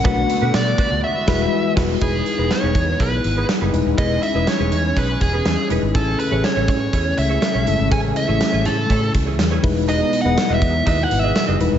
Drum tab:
CC |-----x-x|--------|--------|--------|
HH |xxxx----|xxxxxxxx|xxxxxxxx|xxxxxxxx|
TB |--x-----|--------|--------|--------|
SD |--o--o-o|--o---o-|--o---o-|--o---o-|
BD |o--o-o-o|o--oo---|o---oo--|o--oo---|

CC |--------|--------|
HH |xxxxxxxo|xxxxxxxx|
TB |--------|--------|
SD |--o---o-|--o---o-|
BD |o---oo-o|---oo---|